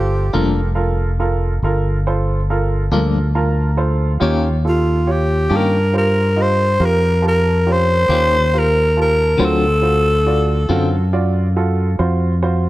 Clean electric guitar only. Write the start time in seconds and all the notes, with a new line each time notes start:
0.33 G2 F3 A#3 D4
2.92 G2 F3 A#3 D4
4.21 D#3 A#3 C#4 G4
5.50 D#3 A#3 C#4 G4
8.09 D#3 A#3 C#4 G4
9.37 D3 F#3 C4 F4
10.69 D3 F#3 C4 F4